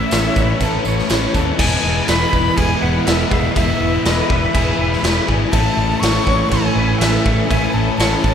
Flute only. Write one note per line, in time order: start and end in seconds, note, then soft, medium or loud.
0.00 1.11 E5 loud
1.60 2.09 G#5 loud
2.08 2.58 B5 loud
2.57 2.84 G#5 loud
2.82 3.08 F#5 loud
3.06 3.31 E5 medium
3.31 3.54 E5 medium
3.56 4.07 E5 loud
4.05 4.32 D#5 medium
4.31 5.29 E5 medium
5.52 6.01 A5 loud
6.00 6.51 C#6 loud
6.49 7.00 G#5 loud
6.98 7.46 E5 loud
7.47 7.75 G#5 loud
7.73 7.96 A5 medium
7.97 8.21 A5 medium
8.22 8.34 A5 medium